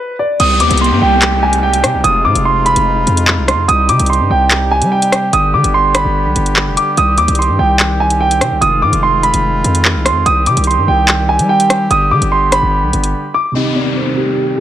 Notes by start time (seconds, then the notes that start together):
Already playing: B4
0.19 D5
0.40 C2 C3 G3 D#4 G4 D#6, closed hi-hat, crash, downlifter
0.60 D#2 D6, closed hi-hat
0.71 C2, closed hi-hat
0.77 C6, closed hi-hat
0.84 closed hi-hat
0.91 G2
1.01 C2 G5
1.22 clap, closed hi-hat
1.43 G#5
1.53 closed hi-hat
1.63 G5
1.73 closed hi-hat
1.84 C3, cross-stick, closed hi-hat
1.94 C2
2.04 F1 G#3 F4 D#6, closed hi-hat
2.25 G#2 D6
2.35 F1, closed hi-hat
2.45 C6
2.66 B5, closed hi-hat
2.76 F1, closed hi-hat
3.07 F2, closed hi-hat
3.17 closed hi-hat
3.28 clap
3.38 C2
3.48 C6, cross-stick, closed hi-hat
3.53 F2
3.68 C2 C3 G3 G4 D#6, closed hi-hat
3.89 C3 D6, closed hi-hat
3.99 C2, closed hi-hat
4.06 C6, closed hi-hat
4.13 closed hi-hat
4.20 G2
4.30 C2 G5
4.51 clap, closed hi-hat
4.71 G#5
4.82 G3, closed hi-hat
4.92 G5
5.02 closed hi-hat
5.12 cross-stick, closed hi-hat
5.33 G1 D3 B3 D#6, closed hi-hat
5.54 D3 D6
5.64 G1, closed hi-hat
5.74 C6
5.95 B5, cross-stick, closed hi-hat
6.05 G1
6.25 B1
6.36 G1, closed hi-hat
6.46 closed hi-hat
6.56 clap
6.67 F1
6.77 D6, closed hi-hat
6.97 C2 D#3 C4 D#6, closed hi-hat
7.18 D#2 D6, closed hi-hat
7.28 C2, closed hi-hat
7.35 C6, closed hi-hat
7.42 closed hi-hat
7.49 G2
7.59 C2 G5
7.80 clap, closed hi-hat
8.00 G#5
8.10 closed hi-hat
8.21 G5
8.31 closed hi-hat
8.41 C3, cross-stick, closed hi-hat
8.52 C2
8.61 F1 G#3 F4 D#6, closed hi-hat
8.82 G#2 D6
8.93 F1, closed hi-hat
9.03 C6
9.23 B5, closed hi-hat
9.34 F1, closed hi-hat
9.64 F2, closed hi-hat
9.75 closed hi-hat
9.85 clap
9.95 C2
10.06 C6, cross-stick, closed hi-hat
10.11 F2
10.26 C2 D#3 G3 G4 D#6, closed hi-hat
10.46 C3 D6, closed hi-hat
10.57 C2, closed hi-hat
10.64 C6, closed hi-hat
10.71 closed hi-hat
10.77 G2
10.88 C2 G5
11.08 clap, closed hi-hat
11.29 G#5
11.39 G3, closed hi-hat
11.49 G5
11.60 closed hi-hat
11.70 cross-stick, closed hi-hat
11.90 G1 D3 B3 D#6, closed hi-hat
12.11 D3 D6
12.21 G1, closed hi-hat
12.32 C6
12.52 B5, cross-stick, closed hi-hat
12.63 G1
12.83 B1
12.93 G1, closed hi-hat
13.04 closed hi-hat
13.34 D6
13.52 C3 D#3 G3 C4 D#4 G4 D#5, downlifter
13.57 G4
13.76 D5
13.96 C5
14.14 C3 C4 D#4 G4
14.19 G4